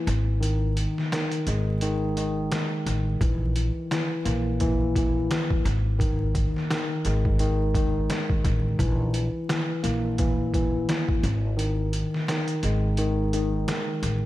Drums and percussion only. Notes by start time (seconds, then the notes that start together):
0.07 closed hi-hat
0.43 closed hi-hat
0.77 closed hi-hat
0.98 snare
1.12 snare, closed hi-hat
1.31 closed hi-hat
1.47 closed hi-hat
1.81 closed hi-hat
2.17 closed hi-hat
2.52 snare, closed hi-hat
2.86 closed hi-hat
3.21 kick, closed hi-hat
3.56 closed hi-hat
3.91 snare, closed hi-hat
4.25 closed hi-hat
4.60 kick, closed hi-hat
4.96 kick, closed hi-hat
5.31 snare, closed hi-hat
5.51 kick
5.66 closed hi-hat
6.00 kick, closed hi-hat
6.35 kick, closed hi-hat
6.56 snare
6.70 snare, closed hi-hat
7.05 closed hi-hat
7.25 kick
7.39 closed hi-hat
7.75 kick, closed hi-hat
8.10 snare, closed hi-hat
8.30 kick
8.44 kick, closed hi-hat
8.79 kick, closed hi-hat
9.14 closed hi-hat
9.49 snare, closed hi-hat
9.84 closed hi-hat
10.18 kick, closed hi-hat
10.54 kick, closed hi-hat
10.89 snare, closed hi-hat
11.09 kick
11.24 closed hi-hat
11.59 closed hi-hat
11.93 closed hi-hat
12.14 snare
12.28 snare, closed hi-hat
12.48 closed hi-hat
12.63 closed hi-hat
12.97 closed hi-hat
13.33 closed hi-hat
13.68 snare, closed hi-hat
14.03 closed hi-hat